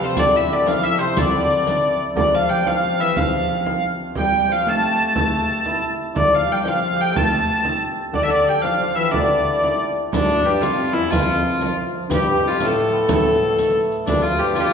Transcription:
Already playing: hammered dulcimer D4 F4 G4 A4
0.00 bass clarinet C3, hammered dulcimer C4, hurdy-gurdy C5, riq, frame drum
0.16 bass clarinet D3, hammered dulcimer D4, hurdy-gurdy D5, riq, frame drum
0.34 hammered dulcimer E4, hurdy-gurdy E5
0.49 bass clarinet D3, hammered dulcimer D4, hurdy-gurdy D5, frame drum
0.66 bass clarinet F3, hammered dulcimer F4, hurdy-gurdy F5, riq, frame drum
0.83 hammered dulcimer E4, hurdy-gurdy E5, frame drum
0.99 bass clarinet C3, hammered dulcimer C4, hurdy-gurdy C5, riq, frame drum
1.15 bass clarinet D3, hammered dulcimer D4, hurdy-gurdy D5, riq, frame drum
1.34 frame drum
1.50 riq
1.67 riq, frame drum
1.83 frame drum
2.15 bass clarinet D3, hammered dulcimer D4, hurdy-gurdy D5, frame drum
2.33 bass clarinet F3, hammered dulcimer F4, hurdy-gurdy F5, frame drum
2.49 hammered dulcimer G4, hurdy-gurdy G5
2.65 bass clarinet F3, hammered dulcimer F4, hurdy-gurdy F5, frame drum
2.99 bass clarinet E3, hammered dulcimer E4, hurdy-gurdy E5, frame drum
3.17 bass clarinet F3, hammered dulcimer F4, hurdy-gurdy F5, frame drum
3.34 frame drum
3.51 frame drum
3.66 hammered dulcimer F4, frame drum
4.00 frame drum
4.15 bass clarinet G3, hammered dulcimer G4, hurdy-gurdy G5, frame drum
4.32 bass clarinet G3, frame drum
4.49 bass clarinet F3, hammered dulcimer F4, hurdy-gurdy F5, frame drum
4.66 bass clarinet A3, hammered dulcimer A4, hurdy-gurdy A5, frame drum
4.99 frame drum
5.15 bass clarinet A3, hammered dulcimer A4, hurdy-gurdy A5, frame drum
5.66 hammered dulcimer E4, frame drum
5.84 frame drum
6.14 bass clarinet D3, hammered dulcimer D4, hurdy-gurdy D5, frame drum
6.31 bass clarinet F3, hammered dulcimer F4, hurdy-gurdy F5, frame drum
6.46 bass clarinet G3, hammered dulcimer G4, frame drum
6.52 hurdy-gurdy G5
6.64 bass clarinet F3, hammered dulcimer F4, frame drum
6.68 hurdy-gurdy F5
6.91 hammered dulcimer A4
6.96 hammered dulcimer G4, frame drum
7.01 hurdy-gurdy G5
7.11 bass clarinet A3, hammered dulcimer A4
7.16 hurdy-gurdy A5, frame drum
7.32 frame drum
7.49 frame drum
7.65 frame drum
7.98 frame drum
8.13 bass clarinet D3, hammered dulcimer D4, hurdy-gurdy D5, frame drum
8.23 bass clarinet D3, hurdy-gurdy E5
8.28 hammered dulcimer D4, hurdy-gurdy D5, frame drum
8.48 hammered dulcimer G4, hurdy-gurdy G5, frame drum
8.62 bass clarinet F3, hammered dulcimer F4, hurdy-gurdy F5, frame drum
8.79 bass clarinet F3, hammered dulcimer F4
8.95 bass clarinet E3, hammered dulcimer E4, hurdy-gurdy E5, frame drum
9.11 bass clarinet D3, hammered dulcimer D4, hurdy-gurdy D5, frame drum
9.47 frame drum
9.64 frame drum
9.81 frame drum
10.12 bass clarinet D2, hammered dulcimer D3, hurdy-gurdy D4, riq, frame drum
10.29 hammered dulcimer F3, frame drum
10.44 bass clarinet G2, hammered dulcimer G3, hurdy-gurdy G4, frame drum
10.60 bass clarinet F2, hammered dulcimer F3, hurdy-gurdy F4, riq, frame drum
10.75 hammered dulcimer F3
10.93 bass clarinet E2, hammered dulcimer E3, hurdy-gurdy E4, frame drum
11.10 bass clarinet F2, hammered dulcimer F3, hurdy-gurdy F4, riq, frame drum
11.29 frame drum
11.45 frame drum
11.61 hammered dulcimer F3, riq, frame drum
11.95 frame drum
12.09 bass clarinet G2, hammered dulcimer G3, hurdy-gurdy G4, riq, frame drum
12.25 bass clarinet G2, hammered dulcimer G3, frame drum
12.42 bass clarinet F2, hammered dulcimer F3, frame drum
12.47 hurdy-gurdy F4
12.59 bass clarinet A2, hammered dulcimer A3, riq, frame drum
12.64 hurdy-gurdy A4
12.93 hammered dulcimer B3, frame drum
13.08 bass clarinet A2, hammered dulcimer A3, riq, frame drum
13.14 hurdy-gurdy A4
13.26 frame drum
13.43 frame drum
13.59 riq, frame drum
13.75 frame drum
13.92 riq
14.07 bass clarinet D2, hammered dulcimer D3, hurdy-gurdy D4, riq, frame drum
14.22 hammered dulcimer F3, hurdy-gurdy F4, frame drum
14.39 bass clarinet G2, hurdy-gurdy G4, frame drum
14.55 bass clarinet F2, hammered dulcimer F3, hurdy-gurdy F4, riq, frame drum
14.60 bass clarinet G2, hurdy-gurdy G4
14.67 bass clarinet F2, hurdy-gurdy F4

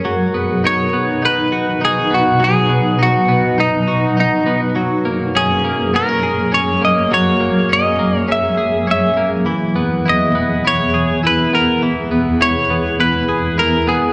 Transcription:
Already playing: clean electric guitar A#3 C#4 G#4
0.05 ambient pad B2 F#3 D#4 B4, clean electric guitar F#3
0.34 clean electric guitar B3
0.64 clean electric guitar D#4 C#5
0.93 clean electric guitar B3
1.22 clean electric guitar D#4 B4
1.52 clean electric guitar F#4
1.81 clean electric guitar D#4 G#4
2.11 clean electric guitar B3 F#4
2.40 clean electric guitar F#3
2.44 clean electric guitar G#4
2.69 clean electric guitar B3
2.99 clean electric guitar D#4 F#4
3.28 clean electric guitar B3
3.58 clean electric guitar D#4
3.88 clean electric guitar F#4
4.17 clean electric guitar D#4
4.46 clean electric guitar B3
4.75 ambient pad F#2 A#3 G#4, clean electric guitar F#3
5.05 clean electric guitar A#3
5.35 clean electric guitar C#4 G#4
5.64 clean electric guitar A#3
5.94 clean electric guitar B3 A#4
6.09 clean electric guitar C#4
6.23 clean electric guitar G#4
6.52 clean electric guitar C#4 C#5
6.81 clean electric guitar A#3 D#5
7.11 clean electric guitar F#3 C#5
7.40 clean electric guitar A#3
7.69 clean electric guitar C#4 D#5
7.99 clean electric guitar A#3
8.19 clean electric guitar C#5
8.28 clean electric guitar C#4 E5
8.57 clean electric guitar G#4
8.87 clean electric guitar C#4 E5
9.17 clean electric guitar A#3
9.45 ambient pad E2 E3 B3 G#4, clean electric guitar E3
9.76 clean electric guitar B3
10.06 clean electric guitar E4 D#5
10.35 clean electric guitar B3
10.65 clean electric guitar E4 C#5
10.94 clean electric guitar G#4
11.23 clean electric guitar E4 B4
11.53 clean electric guitar B3 A#4
11.82 clean electric guitar E3
12.11 clean electric guitar B3
12.41 clean electric guitar E4 C#5
12.70 clean electric guitar B3
13.00 clean electric guitar E4 B4
13.29 clean electric guitar G#4
13.58 clean electric guitar E4 A#4
13.87 clean electric guitar B3 G#4

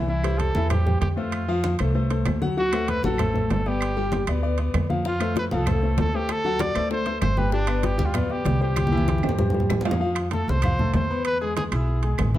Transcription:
Already playing: upright bass C2
0.08 grand piano E3 E4 E5, trumpet E4, high conga
0.24 grand piano G3 G4 C5, high conga, high timbale, claves
0.38 trumpet A4, high conga, high timbale, low timbale
0.55 upright bass E2, grand piano E3 E4 E5, high conga
0.70 grand piano G3 G4 C5, trumpet G4, high conga, low conga, high timbale, claves
0.86 grand piano G3 G4 C5, high conga, low conga
1.01 upright bass F2, trumpet G4, high conga, high timbale, low timbale
1.17 grand piano A3 A4 C5, trumpet F4, high conga
1.32 high conga, high timbale, claves
1.48 grand piano F3 F4 F5, high conga
1.64 high conga, high timbale, low timbale
1.79 upright bass C2, grand piano A3 A4 C5, high conga, high timbale, claves
1.95 grand piano A3 A4 C5, high conga
2.10 grand piano A3 A4 C5, high conga, high timbale
2.26 upright bass D2, high conga, high timbale, low timbale, claves
2.42 grand piano F#3 F#4 F#5, high conga
2.57 grand piano F#3 F#4 F#5, trumpet F#4, high conga
2.72 grand piano A3 A4 C5, high conga, high timbale, claves
2.88 trumpet B4, high conga, high timbale, low timbale
3.03 upright bass A1, grand piano F#3 F#4 F#5, trumpet A4, high conga
3.18 grand piano A3 A4 C5, high conga, low conga, high timbale, claves
3.34 grand piano A3 A4 C5, high conga, low conga
3.50 upright bass G1, trumpet A4, high conga, high timbale, low timbale
3.66 grand piano B3 B4 D5, trumpet G4, high conga
3.81 high conga, high timbale, claves
3.97 grand piano G3 G4 G5, high conga
4.12 high conga, high timbale, low timbale
4.27 upright bass D2, grand piano B3 B4 D5, high conga, high timbale, claves
4.43 grand piano B3 B4 D5, high conga
4.58 grand piano B3 B4 D5, high conga, high timbale
4.74 upright bass F2, high conga, high timbale, low timbale, claves
4.90 grand piano F3 F4 F5, high conga
5.05 grand piano F3 F4 F5, trumpet F4, high bongo, high conga
5.20 grand piano A3 A4 C5, high conga, high timbale, claves
5.36 trumpet B4, high bongo, high conga, high timbale, low timbale
5.51 upright bass C2, grand piano F3 F4 F5, trumpet A4, high conga
5.66 grand piano A3 A4 C5, high bongo, high conga, low conga, high timbale, claves
5.83 grand piano A3 A4 C5, high conga
5.98 upright bass D2, trumpet A4, high bongo, low bongo, high conga, high timbale, low timbale
6.13 grand piano A3 A4 C5, trumpet G4, high conga
6.29 trumpet A4, high bongo, high conga, high timbale, claves
6.44 grand piano F#3 F#4 F#5, high bongo, high conga
6.59 trumpet D5, high bongo, high conga, high timbale, low timbale
6.75 upright bass D2, grand piano A3 A4 C5, high conga, high timbale, claves
6.91 grand piano A3 A4 C5, trumpet C5, high bongo, high conga
7.06 grand piano A3 A4 C5, high bongo, high conga, high timbale
7.21 upright bass G1, trumpet C5, high bongo, low bongo, high conga, high timbale, low timbale, claves
7.37 grand piano G3 G4 G5, trumpet B4, high bongo, high conga
7.52 grand piano G3 G4 G5, trumpet D4, high bongo, high conga
7.67 grand piano B3 B4 D5, high conga, high timbale, claves
7.83 trumpet G4, high bongo, high conga, high timbale, low timbale
7.98 upright bass D2, grand piano G3 G4 G5, high conga
8.05 trumpet F4
8.14 grand piano B3 B4 D5, high bongo, high conga, low conga, high timbale, claves
8.30 grand piano B3 B4 D5, trumpet G4, high conga
8.45 upright bass C2, high bongo, low bongo, high conga, high timbale, low timbale
8.61 grand piano G3 G4 C5, trumpet G4, high conga
8.76 high bongo, high conga, high timbale, claves
8.87 high conga
8.92 grand piano E3 E4 E5, high bongo
8.98 high conga
9.08 high bongo, high conga, high timbale, low timbale
9.18 high conga
9.23 upright bass G2, grand piano G3 G4 C5, high timbale, claves
9.29 low conga
9.39 grand piano G3 G4 C5, high bongo, low conga
9.50 low conga
9.54 grand piano G3 G4 C5, high bongo
9.60 low conga
9.70 upright bass F2, high bongo, low bongo, low conga, low timbale, claves
9.81 grand piano F3, low conga
9.85 grand piano F4 F5, high bongo, low timbale
9.91 low conga
10.00 grand piano F3 F4 F5, high conga
10.15 high conga, high timbale, claves
10.31 grand piano A3 A4 A5, trumpet A4, high conga, high timbale, low timbale
10.48 upright bass C2, trumpet C5, high conga
10.62 grand piano F3 F4 F5, high conga, low conga, high timbale, claves
10.79 grand piano A3 A4 A5, high conga, low conga
10.94 upright bass E2, trumpet C5, high conga, high timbale, low timbale
11.10 grand piano B3 B4 B5, high conga
11.25 trumpet B4, high conga, high timbale, claves
11.41 grand piano G#3 G#4 G#5, trumpet G#4, high conga
11.57 trumpet G#4, high conga, high timbale, low timbale
11.72 upright bass B1, grand piano E4 E5 E6, trumpet G#4, high conga, high timbale, claves
11.88 high conga
12.03 grand piano G#3 G#4 G#5, high conga, high timbale
12.18 upright bass A1, high conga, high timbale, low timbale, claves
12.34 grand piano E3 E4 E5, high conga

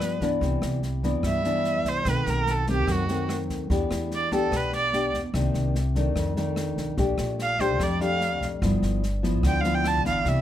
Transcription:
Already playing: nylon-string guitar G2 F3 B3 D4, erhu B4
0.00 cross-stick, snare
0.21 upright bass G1, nylon-string guitar E3 B3 D4, kick, snare
0.41 upright bass C2, nylon-string guitar C3, kick, snare
0.62 upright bass C2, cross-stick, snare
0.82 snare
1.03 nylon-string guitar E3 B3 D4, kick, snare
1.23 upright bass G2, nylon-string guitar G2, kick, cross-stick, snare
1.27 erhu E5
1.44 nylon-string guitar E3 B3 D4, snare
1.64 snare
1.85 upright bass C2, erhu C5, kick, snare
2.05 upright bass B1, nylon-string guitar B2 D#3 A3 C4, kick, cross-stick, snare
2.10 erhu B4
2.26 upright bass B1, erhu A#4, snare
2.46 snare
2.51 erhu A4
2.67 nylon-string guitar D#3 A3 C4, erhu G4, kick, snare
2.87 upright bass F#2, nylon-string guitar F#2, kick, cross-stick, snare
2.91 erhu F#4
3.08 nylon-string guitar D#3 A3 C4, snare
3.29 cross-stick, snare
3.49 upright bass D#2, kick, snare
3.70 upright bass E2, nylon-string guitar E3 B3 D4 G4, kick, snare
3.91 upright bass E2, cross-stick, snare
4.11 snare
4.15 erhu D5
4.31 nylon-string guitar B3 D4 G4, erhu A4, kick, snare
4.52 upright bass B1, nylon-string guitar B2, kick, cross-stick, snare
4.56 erhu B4
4.72 erhu D5, snare
4.93 nylon-string guitar B3 D4 G4, snare
5.13 upright bass E2, kick, snare
5.34 upright bass C2, nylon-string guitar C3 D#3 A#3 D4, kick, cross-stick, snare
5.54 upright bass C2, snare
5.75 snare
5.95 nylon-string guitar D#3 A3 D4, kick, snare
6.16 upright bass F2, nylon-string guitar F2, kick, cross-stick, snare
6.36 nylon-string guitar D#3 A3 D4, snare
6.56 cross-stick, snare
6.77 upright bass B1, kick, snare
6.97 upright bass A#1, nylon-string guitar A#2 A3 D4 G4, kick, snare
7.18 upright bass A#1, cross-stick, snare
7.39 erhu F5, snare
7.59 nylon-string guitar A3 D4 G4, erhu C5, kick, snare
7.80 upright bass F2, nylon-string guitar F2, erhu D5, kick, cross-stick, snare
8.00 nylon-string guitar A3 D4 G4, erhu F5, snare
8.21 snare
8.41 upright bass A#1, kick, snare
8.62 upright bass G1, nylon-string guitar G2 F3 B3 E4, kick, cross-stick, snare
8.82 upright bass G1, snare
9.03 snare
9.23 nylon-string guitar F3 B3 E4, kick, snare
9.43 upright bass D2, nylon-string guitar D3, erhu G5, kick, cross-stick, snare
9.61 nylon-string guitar F3, erhu F5, snare
9.65 nylon-string guitar B3 E4
9.75 erhu G5
9.84 erhu A5, cross-stick, snare
10.05 upright bass G1, nylon-string guitar E3 B3 D4, erhu F5, kick, snare
10.25 upright bass C2, nylon-string guitar C3, erhu E5, kick, snare

